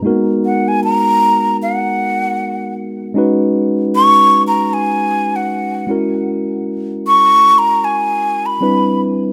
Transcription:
0.03 3.11 G#3 medium
0.03 0.11 A#3 medium
0.03 3.12 D#4 medium
0.03 3.13 F#4 medium
0.07 3.15 B3 medium
0.07 3.13 A#4 medium
0.46 0.70 F#5 medium
0.68 0.83 G#5 loud
0.84 1.57 A#5 loud
1.63 2.74 F#5 medium
3.14 5.84 G#3 medium
3.14 5.84 C#4 medium
3.14 5.85 D#4 medium
3.14 5.85 F#4 medium
3.18 5.86 B4 medium
3.96 4.43 C#6 loud
4.48 4.75 A#5 medium
4.73 5.37 G#5 loud
5.36 5.90 F#5 medium
5.87 8.56 G#3 medium
5.87 8.57 C#4 medium
5.87 8.57 E4 medium
5.87 8.58 F#4 medium
5.91 8.58 A#4 medium
7.07 7.60 C#6 loud
7.58 7.86 A#5 loud
7.84 8.47 G#5 loud
8.46 9.01 B5 medium
8.61 9.33 G3 medium
8.61 9.33 C4 medium
8.61 9.33 D4 medium
8.61 9.33 E4 medium
8.61 9.33 B4 medium

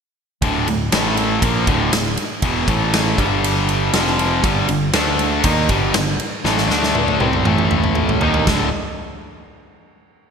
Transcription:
0.42 0.65 D1 medium
0.42 0.66 D2 medium
0.42 0.67 A2 loud
0.42 0.67 D3 loud
0.42 kick loud
0.42 ride medium
0.68 0.91 D1 medium
0.68 0.88 D2 medium
0.68 0.88 A2 medium
0.68 ride medium
0.92 1.39 A1 medium
0.92 1.42 A2 medium
0.92 1.42 E3 medium
0.92 1.42 A3 medium
0.92 snare loud
0.92 ride loud
1.17 ride medium
1.42 1.66 A#1 medium
1.42 1.67 A#2 medium
1.42 1.68 F3 medium
1.42 1.68 A#3 medium
1.42 kick medium
1.42 ride loud
1.67 1.91 D1 medium
1.67 1.92 D2 medium
1.67 1.92 A2 medium
1.67 1.93 D3 medium
1.67 kick loud
1.67 ride medium
1.93 2.16 D1 medium
1.93 2.13 D2 medium
1.93 2.13 A2 medium
1.93 snare loud
1.93 ride loud
2.17 ride medium
2.42 2.66 E1 medium
2.42 2.67 E2 medium
2.42 2.68 B2 loud
2.42 2.68 E3 loud
2.42 kick loud
2.42 ride medium
2.67 3.14 A1 medium
2.67 3.17 A2 medium
2.67 3.18 E3 loud
2.67 3.18 A3 loud
2.67 kick medium
2.67 ride medium
2.93 snare loud
2.93 ride medium
3.18 3.89 G1 medium
3.18 3.93 G2 medium
3.18 3.93 D3 medium
3.18 3.93 G3 loud
3.18 kick medium
3.18 ride medium
3.44 ride medium
3.69 ride medium
3.93 4.40 F1 medium
3.93 4.43 F2 medium
3.93 4.43 C3 medium
3.93 4.43 F3 loud
3.93 snare loud
3.93 ride medium
4.07 snare soft
4.19 ride medium
4.43 4.67 G1 medium
4.43 4.67 G2 medium
4.43 4.68 D3 medium
4.43 4.68 G3 loud
4.43 kick loud
4.43 ride medium
4.68 4.92 G1 medium
4.68 4.89 G2 medium
4.68 4.89 D3 medium
4.68 ride medium
4.93 5.40 D2 medium
4.93 5.43 D3 medium
4.93 5.44 A3 medium
4.93 5.44 D4 medium
4.93 snare loud
4.93 ride medium
5.19 ride medium
5.44 5.67 D#2 medium
5.44 5.68 D#3 medium
5.44 5.69 A#3 medium
5.44 5.69 D#4 medium
5.44 kick loud
5.44 ride loud
5.69 5.93 G1 medium
5.69 5.93 G2 medium
5.69 5.93 D3 loud
5.69 5.94 G3 loud
5.69 kick medium
5.69 ride medium
5.94 6.18 G1 medium
5.94 6.14 G2 medium
5.94 6.14 D3 medium
5.94 snare loud
5.94 ride medium
6.20 ride medium
6.44 6.68 A1 medium
6.44 6.69 A2 loud
6.44 6.69 E3 loud
6.44 6.69 A3 loud
6.44 snare medium
6.58 snare medium
6.69 7.16 D2 medium
6.69 7.20 D3 medium
6.69 7.20 A3 loud
6.69 7.20 D4 loud
6.69 snare medium
6.83 snare medium
6.95 high tom medium
7.08 high tom medium
7.19 7.44 C2 medium
7.19 7.44 C3 medium
7.19 7.45 G3 medium
7.19 7.45 C4 loud
7.19 high tom medium
7.33 mid tom medium
7.45 8.18 A1 medium
7.45 8.21 A2 medium
7.45 8.21 E3 medium
7.45 8.21 A3 loud
7.45 mid tom medium
7.58 mid tom medium
7.71 mid tom medium
7.84 mid tom medium
7.95 mid tom medium
8.09 floor tom medium
8.21 8.45 D#2 medium
8.21 8.46 D#3 medium
8.21 8.46 A#3 medium
8.21 8.47 D#4 medium
8.21 floor tom medium
8.34 floor tom medium
8.47 8.71 D1 medium
8.47 8.67 D2 medium
8.47 8.67 A2 loud
8.47 8.68 D3 loud
8.47 kick medium
8.47 snare loud
8.47 crash medium

